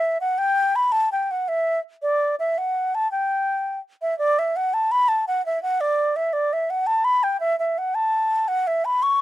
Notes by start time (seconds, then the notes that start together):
Already playing: E5
0.21 F#5
0.38 G5
0.76 B5
0.92 A5
1.12 G5
1.31 F#5
1.48 E5
2.02 D5
2.39 E5
2.58 F#5
2.95 A5
3.12 G5
4.02 E5
4.18 D5
4.39 E5
4.56 F#5
4.74 A5
4.92 B5
5.08 A5
5.28 F#5
5.46 E5
5.63 F#5
5.81 D5
6.16 E5
6.33 D5
6.53 E5
6.70 F#5
6.87 A5
7.04 B5
7.23 G5
7.40 E5
7.59 E5
7.78 F#5
7.95 A5
8.48 F#5
8.67 E5
8.85 B5
9.03 C#6